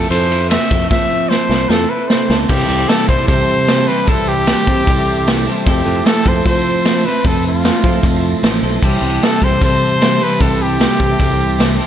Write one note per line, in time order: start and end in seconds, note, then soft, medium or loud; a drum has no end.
0.00 0.32 F3 medium
0.00 0.51 C4 medium
0.00 0.31 E4 medium
0.00 0.11 A4 medium
0.10 0.56 F2 loud
0.10 0.69 A4 medium
0.10 0.48 C5 loud
0.10 ride medium
0.32 1.31 E4 medium
0.32 ride medium
0.50 1.09 C4 medium
0.50 0.88 E5 medium
0.50 snare loud
0.50 ride medium
0.71 0.86 F2 loud
0.71 1.29 A4 medium
0.71 kick medium
0.71 ride medium
0.90 1.90 F3 medium
0.90 1.36 F3 medium
0.90 1.31 E5 medium
0.90 kick loud
0.90 snare medium
1.10 2.09 C4 medium
1.29 1.69 A4 medium
1.29 1.71 C5 loud
1.29 snare medium
1.49 1.65 C2 medium
1.49 1.89 E4 medium
1.49 snare medium
1.69 1.85 F2 loud
1.69 1.91 A4 medium
1.69 2.29 A4 medium
1.69 snare medium
1.90 2.49 E4 medium
1.90 2.10 B4 medium
2.08 2.49 C4 medium
2.08 2.39 C5 medium
2.08 snare loud
2.30 2.45 C#2 medium
2.30 2.49 A4 medium
2.30 snare medium
2.48 2.64 C2 medium
2.48 2.89 C3 loud
2.48 2.89 E3 loud
2.48 2.90 G3 loud
2.48 2.89 C4 loud
2.48 2.90 E4 loud
2.48 2.90 G4 loud
2.48 5.63 G4 medium
2.48 2.90 A4 loud
2.48 11.87 E5 medium
2.48 8.79 A5 medium
2.48 11.87 C6 medium
2.48 kick loud
2.48 crash loud
2.48 shaker loud
2.69 2.84 C2 medium
2.69 shaker medium
2.89 3.07 C3 loud
2.89 3.08 E3 medium
2.89 3.08 G3 loud
2.89 3.09 C4 loud
2.89 3.09 E4 loud
2.89 3.08 A4 loud
2.89 3.09 A4 loud
2.89 snare loud
2.89 open hi-hat medium
2.89 shaker loud
3.08 3.24 C2 loud
3.08 3.27 C3 loud
3.08 3.28 E3 loud
3.08 3.27 G3 loud
3.08 3.29 C4 loud
3.08 3.29 E4 loud
3.08 3.29 A4 loud
3.08 3.27 C5 loud
3.08 kick loud
3.08 shaker medium
3.28 3.67 C3 medium
3.28 3.88 C3 medium
3.28 3.68 E3 loud
3.28 3.68 G3 loud
3.28 3.69 C4 loud
3.28 3.69 E4 loud
3.28 3.69 A4 loud
3.28 3.89 C5 loud
3.28 kick loud
3.28 open hi-hat medium
3.28 shaker loud
3.49 shaker medium
3.68 3.86 C3 medium
3.68 3.88 E3 medium
3.68 3.87 G3 medium
3.68 3.88 C4 medium
3.68 3.88 E4 loud
3.68 3.89 A4 loud
3.68 snare loud
3.68 open hi-hat medium
3.68 shaker medium
3.88 4.06 C3 medium
3.88 4.08 E3 medium
3.88 4.07 G3 loud
3.88 4.08 C4 medium
3.88 4.08 E4 medium
3.88 4.09 A4 loud
3.88 4.11 B4 loud
3.88 shaker medium
4.07 4.52 C2 medium
4.07 4.46 C3 loud
4.07 4.47 E3 loud
4.07 4.46 G3 loud
4.07 4.47 C4 loud
4.07 4.48 E4 loud
4.07 4.30 A4 loud
4.07 4.48 A4 loud
4.07 kick loud
4.07 open hi-hat medium
4.07 shaker loud
4.26 5.46 G4 loud
4.26 shaker medium
4.46 4.65 C3 medium
4.46 4.67 E3 medium
4.46 4.66 G3 loud
4.46 4.67 C4 medium
4.46 4.67 E4 loud
4.46 4.68 A4 loud
4.46 snare loud
4.46 open hi-hat medium
4.46 shaker medium
4.67 4.85 C3 medium
4.67 4.82 C3 loud
4.67 4.86 E3 loud
4.67 4.86 G3 medium
4.67 4.87 C4 loud
4.67 4.87 E4 loud
4.67 4.88 A4 loud
4.67 kick medium
4.67 shaker medium
4.86 5.47 C2 loud
4.86 5.25 C3 medium
4.86 5.26 E3 loud
4.86 5.26 G3 loud
4.86 5.27 C4 loud
4.86 5.27 E4 loud
4.86 5.27 A4 loud
4.86 kick loud
4.86 open hi-hat medium
4.86 shaker loud
5.07 shaker medium
5.26 5.44 C3 medium
5.26 5.46 E3 medium
5.26 5.45 G3 loud
5.26 5.46 C4 medium
5.26 5.47 E4 medium
5.26 5.47 A4 loud
5.26 snare loud
5.26 open hi-hat medium
5.26 shaker medium
5.46 5.64 C3 medium
5.46 5.66 E3 medium
5.46 5.65 G3 medium
5.46 5.66 C4 medium
5.46 5.67 E4 loud
5.46 5.67 A4 loud
5.46 shaker medium
5.66 5.81 F2 medium
5.66 6.05 F3 medium
5.66 8.80 F3 medium
5.66 6.05 A3 loud
5.66 6.05 C4 loud
5.66 6.06 E4 loud
5.66 6.07 G4 medium
5.66 6.06 A4 loud
5.66 kick loud
5.66 open hi-hat medium
5.66 shaker medium
5.86 6.01 F2 loud
5.86 shaker medium
6.05 6.25 F3 medium
6.05 6.25 A3 loud
6.05 6.25 C4 medium
6.05 6.26 E4 loud
6.05 6.30 A4 loud
6.05 6.26 A4 loud
6.05 snare loud
6.05 open hi-hat medium
6.05 shaker medium
6.25 6.40 F2 loud
6.25 6.44 F3 loud
6.25 6.45 A3 medium
6.25 6.45 C4 loud
6.25 6.46 E4 loud
6.25 6.46 A4 loud
6.25 6.47 C5 medium
6.25 kick medium
6.25 shaker medium
6.45 6.83 F3 medium
6.45 7.05 F3 loud
6.45 6.85 A3 loud
6.45 6.85 C4 loud
6.45 6.85 E4 loud
6.45 6.85 A4 loud
6.45 7.07 C5 loud
6.45 kick loud
6.45 open hi-hat medium
6.45 shaker medium
6.65 shaker medium
6.84 7.03 F3 medium
6.84 7.04 A3 medium
6.84 7.04 C4 medium
6.84 7.05 E4 loud
6.84 7.05 A4 loud
6.84 snare loud
6.84 open hi-hat medium
6.84 shaker medium
7.04 7.23 F3 medium
7.04 7.24 A3 medium
7.04 7.24 C4 medium
7.04 7.25 E4 loud
7.04 7.25 A4 medium
7.04 7.28 B4 medium
7.04 shaker medium
7.24 7.69 F2 medium
7.24 7.63 F3 loud
7.24 7.64 A3 loud
7.24 7.64 C4 loud
7.24 7.65 E4 loud
7.24 7.65 A4 loud
7.24 7.45 A4 medium
7.24 kick loud
7.24 open hi-hat medium
7.24 shaker medium
7.44 8.33 F4 medium
7.44 shaker medium
7.64 7.83 F3 medium
7.64 7.84 A3 medium
7.64 7.84 C4 loud
7.64 7.84 E4 medium
7.64 7.85 A4 loud
7.64 snare loud
7.64 open hi-hat medium
7.64 shaker medium
7.83 7.99 F3 medium
7.83 8.02 F3 medium
7.83 8.03 A3 medium
7.83 8.03 C4 loud
7.83 8.03 E4 loud
7.83 8.04 A4 loud
7.83 kick loud
7.83 shaker medium
8.03 8.33 F2 loud
8.03 8.42 F3 medium
8.03 8.43 A3 medium
8.03 8.43 C4 loud
8.03 8.43 E4 loud
8.03 8.44 A4 loud
8.03 kick loud
8.03 open hi-hat medium
8.03 shaker loud
8.23 shaker medium
8.43 8.61 A1 medium
8.43 8.61 F3 medium
8.43 8.62 A3 medium
8.43 8.62 C4 medium
8.43 8.62 E4 medium
8.43 8.63 A4 medium
8.43 snare loud
8.43 open hi-hat medium
8.43 shaker loud
8.62 8.81 B1 medium
8.62 8.81 F3 medium
8.62 8.82 A3 medium
8.62 8.83 C4 medium
8.62 8.83 E4 medium
8.62 8.83 A4 loud
8.62 shaker medium
8.82 8.97 C2 medium
8.82 9.21 C3 medium
8.82 9.21 E3 loud
8.82 9.22 G3 loud
8.82 9.22 C4 loud
8.82 9.22 E4 loud
8.82 11.87 G4 medium
8.82 9.26 G4 medium
8.82 9.22 A4 loud
8.82 11.87 A5 medium
8.82 kick loud
8.82 crash loud
8.82 shaker loud
9.02 9.17 C2 medium
9.02 shaker medium
9.21 9.40 C3 medium
9.21 9.40 E3 medium
9.21 9.41 G3 medium
9.21 9.42 C4 loud
9.21 9.42 E4 medium
9.21 9.42 A4 loud
9.21 9.45 A4 loud
9.21 snare loud
9.21 open hi-hat medium
9.21 shaker loud
9.41 9.57 C2 loud
9.41 9.59 C3 medium
9.41 9.60 E3 loud
9.41 9.60 G3 loud
9.41 9.61 C4 loud
9.41 9.61 E4 loud
9.41 9.61 A4 loud
9.41 9.63 C5 loud
9.41 kick loud
9.41 shaker medium
9.60 9.99 C3 medium
9.60 10.21 C3 medium
9.60 10.00 E3 loud
9.60 10.00 G3 loud
9.60 10.01 C4 loud
9.60 10.01 E4 loud
9.60 10.01 A4 loud
9.60 10.25 C5 loud
9.60 kick loud
9.60 open hi-hat medium
9.60 shaker loud
9.81 shaker medium
10.00 10.19 C3 loud
10.00 10.20 E3 medium
10.00 10.20 G3 loud
10.00 10.20 C4 medium
10.00 10.21 E4 loud
10.00 10.21 A4 loud
10.00 snare loud
10.00 open hi-hat medium
10.00 shaker loud
10.20 10.38 C3 medium
10.20 10.39 E3 medium
10.20 10.39 G3 medium
10.20 10.40 C4 medium
10.20 10.40 E4 loud
10.20 10.41 A4 loud
10.20 10.43 B4 loud
10.20 shaker medium
10.39 10.85 C2 medium
10.39 10.78 C3 loud
10.39 10.79 E3 loud
10.39 10.79 G3 loud
10.39 10.80 C4 loud
10.39 10.80 E4 loud
10.39 10.80 A4 loud
10.39 10.64 A4 medium
10.39 kick loud
10.39 open hi-hat medium
10.39 shaker loud
10.59 11.80 G4 loud
10.59 shaker medium
10.78 10.97 C3 medium
10.78 10.99 E3 medium
10.78 10.98 G3 loud
10.78 10.99 C4 loud
10.78 10.99 E4 loud
10.78 11.00 A4 loud
10.78 snare loud
10.78 open hi-hat medium
10.78 shaker loud
10.98 11.17 C3 medium
10.98 11.15 C3 loud
10.98 11.18 E3 loud
10.98 11.18 G3 loud
10.98 11.19 C4 medium
10.98 11.19 E4 medium
10.98 11.20 A4 loud
10.98 kick medium
10.98 shaker medium
11.18 11.79 C2 loud
11.18 11.56 C3 loud
11.18 11.58 E3 loud
11.18 11.57 G3 medium
11.18 11.58 C4 loud
11.18 11.58 E4 loud
11.18 11.59 A4 loud
11.18 kick loud
11.18 open hi-hat medium
11.18 shaker loud
11.38 shaker medium
11.58 11.77 C3 medium
11.58 11.78 E3 medium
11.58 11.77 G3 loud
11.58 11.78 C4 loud
11.58 11.79 E4 loud
11.58 11.79 A4 loud
11.58 snare loud
11.58 open hi-hat medium
11.58 shaker medium
11.78 11.87 C3 medium
11.78 11.87 E3 medium
11.78 11.87 G3 medium
11.78 11.87 C4 medium
11.78 11.87 E4 loud
11.78 11.87 A4 loud
11.78 shaker medium